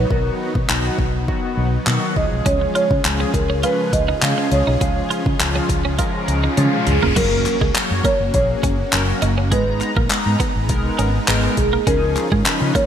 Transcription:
Already playing: F#3 B3 D#4 B4
0.10 B1 D#3 F#3 B3 F#4 A#4, kick
0.55 B2, kick
0.69 B1 D#3 F#3 B3 F#4, clap
0.98 B1, kick
1.28 D#3 F#3 B3 F#4, kick
1.57 B1
1.87 B2 D#3 F#3 B3 F#4, clap
2.16 C#2 C#3 F3 G#3 C#4 F4 G#4 D#5, kick
2.32 B1
2.46 C#2 C#4 C#5, kick, closed hi-hat
2.61 muted clean electric guitar stroke
2.75 F4 C#5, closed hi-hat
2.91 C#3, kick
3.04 C#2 F3 G#3 C#4 G#4, clap, closed hi-hat
3.20 C#4
3.34 C#2 A#4, muted clean electric guitar stroke, kick, closed hi-hat
3.50 C#4
3.63 F3 G#3 C#4 F4 B4, closed hi-hat
3.93 C#2 D#5, muted clean electric guitar stroke, kick, closed hi-hat
4.08 D#4
4.22 C#3 F3 G#3 C#4 G#4 F5, clap, closed hi-hat
4.38 C#4
4.51 C#2 C#5, muted clean electric guitar stroke, closed hi-hat
4.67 B1 D#4
4.81 C#2 F3 G#3 C#4 G#4 F5, kick, closed hi-hat, riser
5.10 F4, closed hi-hat
5.26 C#3, muted clean electric guitar stroke, kick
5.40 C#2 F3 G#3 C#4 F4, clap, closed hi-hat
5.56 C#4
5.69 C#2, muted clean electric guitar stroke, kick, closed hi-hat
5.85 C#4
5.99 F3 G#3 C#4 F4 A#4, kick, closed hi-hat
6.28 C#2, muted clean electric guitar stroke, closed hi-hat
6.44 D#4
6.57 C#3 F3 G#3 C#4 F4, closed hi-hat, high tom
6.73 mid tom
6.87 C#2 G#4, muted clean electric guitar stroke, closed hi-hat, mid tom
7.02 F1 A#3, floor tom
7.16 F#1 F#3 A#3 C#4 F#4 A#4, kick, closed hi-hat, crash, impact
7.46 muted clean electric guitar stroke, clap, closed hi-hat
7.61 C#2 G#3, kick
7.75 F#3 A#3 C#4 C#5, clap, closed hi-hat
7.91 F#2
8.04 A#3 C#5, kick, closed hi-hat
8.20 F#1
8.34 A#1 F#3 A#3 C#4 G#4 C#5, kick, closed hi-hat
8.63 F#1 C#4, kick, closed hi-hat
8.93 F#1 F#3 A#3 C#4 A#4, muted clean electric guitar stroke, clap, closed hi-hat
9.22 F#1 D#4, closed hi-hat
9.38 C#4
9.51 G#1 G#3 B3 D#4 B4 A#5, kick, closed hi-hat
9.81 muted clean electric guitar stroke, clap, closed hi-hat
9.96 A#1 A#3, kick
10.10 G#3 B3 D#4 A#5, muted fingered electric bass stroke, clap, closed hi-hat
10.26 G#2
10.40 B3, kick, closed hi-hat
10.55 G#1
10.69 B1 G#3 B3 D#4 A#4, kick, closed hi-hat
10.99 G#1 C#4, closed hi-hat
11.28 G#1 G#3 B3 D#4 A#4, clap, closed hi-hat
11.44 muted clean electric guitar stroke
11.57 B1 G#4, kick, closed hi-hat
11.73 A#3
11.87 C#2 C#3 F3 C#4 D#4 F4 G#4 A#4, kick, closed hi-hat
12.16 muted clean electric guitar stroke, clap, closed hi-hat
12.32 G#2 G#3, kick
12.46 F3 C#4 D#4 B4, clap, closed hi-hat
12.61 C#3
12.75 A#3 C#5, kick, closed hi-hat

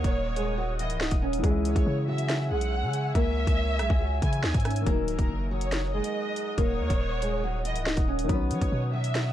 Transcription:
Already playing: D#3 F#3 A#3 D#4 A#4 C#5 D#5 F#5 D#6
0.04 D#1, kick, closed hi-hat
0.36 G#3 G#4, closed hi-hat
0.58 F#3 F#4
0.79 E3 E4 D#5, closed hi-hat
0.90 C#1, closed hi-hat
1.01 D#4 D#5, snare
1.11 D#1, kick, closed hi-hat
1.22 C#4 C#5
1.33 closed hi-hat
1.39 E3 G#3
1.43 C#2 G#3 C#4 G#4 C#5 E5 G#5 E6, kick, closed hi-hat
1.49 E4
1.65 C#5, closed hi-hat
1.76 C#2, kick, closed hi-hat
1.86 C#3
2.08 F#3 F#4 E5
2.18 closed hi-hat
2.29 snare, closed hi-hat
2.51 B1 G#3 G#4 F#5
2.61 closed hi-hat
2.83 C#3
2.93 closed hi-hat
3.15 C#2 A#3 A#4 E5, kick, closed hi-hat
3.47 C#2, kick, closed hi-hat
3.79 B1 G#3 G#4, cross-stick, closed hi-hat
3.90 C#2, kick
4.01 F#3 F#4
4.22 C#3 E3 E4 G#5, kick, closed hi-hat
4.33 closed hi-hat
4.44 D#2 D#4 D#5, snare
4.54 G#2, kick, closed hi-hat
4.60 closed hi-hat
4.65 C#4 C#5, cross-stick, closed hi-hat
4.71 closed hi-hat
4.76 closed hi-hat
4.81 D#3 F#3
4.86 D#1 A#3 A#4 D#5 F#5 D#6, kick, closed hi-hat
4.92 D#4
5.08 C#1 A#4, closed hi-hat
5.19 D#1, kick, closed hi-hat
5.29 F#1
5.51 F#3 F#4 C#5
5.61 closed hi-hat
5.72 snare, closed hi-hat
5.94 G#3 G#4 D#5
6.04 closed hi-hat
6.36 closed hi-hat
6.58 D#1 A#3 A#4 C#5, kick, closed hi-hat
6.79 D#2
6.90 D#1, kick, closed hi-hat
7.22 G#3 G#4, closed hi-hat
7.44 F#3 F#4
7.65 E3 E4 D#5, closed hi-hat
7.76 C#1, closed hi-hat
7.86 D#4 D#5, snare
7.97 D#1, kick, closed hi-hat
8.08 C#4 C#5
8.19 closed hi-hat
8.24 D#3 F#3
8.29 B1 B3 B4 C#5, kick, closed hi-hat
8.35 C#4
8.51 F#3 C#5, closed hi-hat
8.61 B1, kick, closed hi-hat
8.72 B2
8.93 F#3 F#4 E5
9.04 closed hi-hat
9.15 snare, closed hi-hat

